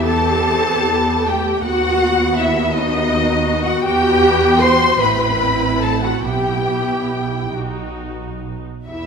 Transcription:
0.00 1.60 E2 medium
0.00 0.43 B3 medium
0.00 1.60 G4 medium
0.05 1.26 A4 loud
0.05 1.26 A5 loud
0.05 1.27 A5 medium
0.48 0.87 C4 medium
0.89 1.27 B3 medium
1.26 1.64 A3 medium
1.26 1.65 G4 medium
1.26 1.65 G5 medium
1.64 3.84 D#2 medium
1.64 3.83 B3 medium
1.64 2.37 F#4 loud
1.64 2.73 F#4 medium
1.64 2.36 F#5 loud
1.64 2.37 F#5 loud
2.38 2.74 E4 loud
2.38 2.75 E5 medium
2.74 3.65 D#4 loud
2.74 4.96 F#4 medium
2.74 3.65 D#5 loud
2.74 3.65 D#5 medium
3.65 3.84 F#4 loud
3.65 3.84 F#5 medium
3.65 3.85 F#5 medium
3.84 4.98 E2 medium
3.84 4.98 B3 loud
3.84 4.59 G4 loud
3.84 4.58 G5 loud
4.59 5.00 C5 loud
4.59 4.99 C6 loud
4.59 5.00 C6 loud
4.99 6.21 A1 medium
4.99 6.21 C4 medium
4.99 6.23 E4 medium
4.99 5.81 B4 loud
4.99 5.81 B5 medium
4.99 5.82 B5 medium
5.81 6.02 A4 loud
5.81 6.02 A5 medium
6.01 6.24 F#4 medium
6.01 6.23 F#5 medium
6.01 6.24 F#5 medium
6.22 7.51 B1 medium
6.22 7.54 B3 medium
6.22 7.51 E4 medium
6.22 7.54 G4 medium
6.22 7.50 G5 medium
6.22 7.52 G5 medium
7.54 8.61 B1 medium
7.54 8.61 D#4 medium
7.54 8.63 F#4 medium
8.87 9.06 E2 medium
8.87 9.06 B3 medium
8.87 9.06 E4 medium
8.87 9.06 G4 medium
8.87 9.06 E5 medium

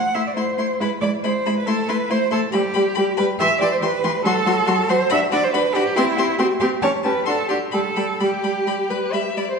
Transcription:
0.00 0.16 F#5 medium
0.14 0.23 A3 medium
0.14 0.22 E4 soft
0.14 0.28 E5 medium
0.14 0.23 C6 medium
0.26 0.36 D5 medium
0.36 0.44 A3 medium
0.36 0.44 E4 medium
0.36 0.79 C5 medium
0.36 0.45 C6 medium
0.57 0.65 A3 medium
0.57 0.66 E4 soft
0.57 0.66 C6 medium
0.80 0.88 G#3 medium
0.80 0.89 E4 medium
0.80 0.88 B4 medium
0.80 0.89 B5 medium
1.01 1.09 G#3 medium
1.01 1.10 E4 medium
1.01 1.09 D5 medium
1.01 1.11 B5 medium
1.23 1.31 G#3 medium
1.23 1.33 E4 medium
1.23 1.55 C5 medium
1.23 1.32 B5 medium
1.46 1.54 G#3 medium
1.46 1.54 E4 medium
1.46 1.54 B5 medium
1.57 1.68 B4 medium
1.66 1.75 A3 medium
1.66 1.76 E4 medium
1.66 1.90 A4 loud
1.66 1.75 C6 medium
1.88 1.97 A3 medium
1.88 1.97 E4 medium
1.88 2.12 B4 medium
1.88 1.97 C6 medium
2.10 2.19 A3 medium
2.10 2.18 E4 medium
2.10 2.31 C5 loud
2.10 2.18 C6 medium
2.31 2.40 A3 medium
2.31 2.39 E4 medium
2.31 2.40 A4 loud
2.31 2.39 C6 medium
2.52 2.62 G3 medium
2.52 3.16 G4 medium
2.52 2.62 G4 medium
2.52 2.60 B5 medium
2.74 2.83 G3 medium
2.74 2.84 G4 medium
2.74 2.82 B5 medium
2.95 3.05 G3 medium
2.95 3.05 G4 medium
2.95 3.03 B5 medium
3.17 3.27 G3 medium
3.17 3.26 G4 medium
3.17 3.25 B4 loud
3.17 3.25 B5 medium
3.39 3.48 E3 medium
3.39 3.48 G4 medium
3.39 3.59 E5 loud
3.39 3.48 C6 medium
3.60 3.69 E3 medium
3.60 3.68 G4 medium
3.60 3.71 D5 loud
3.60 3.70 C6 medium
3.72 3.76 C5 loud
3.82 3.90 E3 medium
3.82 3.90 G4 medium
3.82 4.24 B4 loud
3.82 3.90 C6 medium
4.04 4.12 E3 medium
4.04 4.12 G4 medium
4.04 4.12 C6 medium
4.25 4.33 F#3 medium
4.25 4.33 F#4 medium
4.25 4.91 A4 loud
4.25 4.34 C6 medium
4.46 4.54 F#3 medium
4.46 4.54 F#4 medium
4.46 4.55 C6 medium
4.66 4.76 F#3 medium
4.66 4.74 F#4 medium
4.66 4.75 C6 medium
4.89 4.98 F#3 medium
4.89 4.97 F#4 medium
4.89 5.10 C5 loud
4.89 4.97 C6 medium
5.10 5.19 D4 medium
5.10 5.19 F#4 medium
5.10 5.19 E5 loud
5.10 5.18 B5 medium
5.32 5.40 D4 medium
5.32 5.40 F#4 medium
5.32 5.45 D5 loud
5.32 5.40 B5 medium
5.44 5.53 C5 loud
5.53 5.62 D4 medium
5.53 5.61 F#4 medium
5.53 5.76 B4 loud
5.53 5.62 B5 medium
5.75 5.84 D4 medium
5.75 5.83 F#4 medium
5.75 5.98 G4 loud
5.75 5.83 B5 medium
5.96 6.06 C4 loud
5.96 6.38 E4 loud
5.96 6.04 G4 medium
5.96 6.05 C6 medium
6.17 6.26 C4 medium
6.17 6.25 G4 medium
6.17 6.26 C6 medium
6.38 6.47 C4 medium
6.38 6.46 F#4 medium
6.38 6.47 G4 medium
6.38 6.47 C6 medium
6.60 6.70 C4 medium
6.60 6.68 G4 medium
6.60 6.68 G4 loud
6.60 6.68 C6 medium
6.82 6.91 C#4 medium
6.82 6.90 G4 medium
6.82 6.90 C#5 loud
6.82 6.90 A5 medium
7.03 7.13 C#4 medium
7.03 7.12 G4 medium
7.03 7.26 B4 medium
7.03 7.11 A5 medium
7.26 7.35 D4 medium
7.26 7.35 F#4 medium
7.26 7.48 A4 medium
7.26 7.34 C6 medium
7.49 7.58 D4 medium
7.49 7.59 F#4 medium
7.49 7.57 G4 loud
7.49 7.57 C6 medium
7.72 7.82 G3 medium
7.72 7.81 G4 medium
7.72 8.22 A4 medium
7.72 7.80 B5 medium
7.96 8.05 G3 medium
7.96 8.04 G4 medium
7.96 8.04 B5 medium
8.20 8.29 G3 medium
8.20 9.36 G4 medium
8.20 8.91 G4 medium
8.20 8.28 B5 medium
8.43 8.51 G3 medium
8.43 8.52 B5 medium
8.66 8.74 G3 medium
8.66 8.75 B5 medium
8.90 8.98 G3 medium
8.90 9.14 B4 medium
8.90 8.98 B5 medium
9.13 9.21 G3 medium
9.13 9.39 E5 medium
9.13 9.21 B5 medium
9.36 9.44 G3 medium
9.36 9.49 D5 medium
9.36 9.45 B5 medium
9.50 9.59 C5 medium

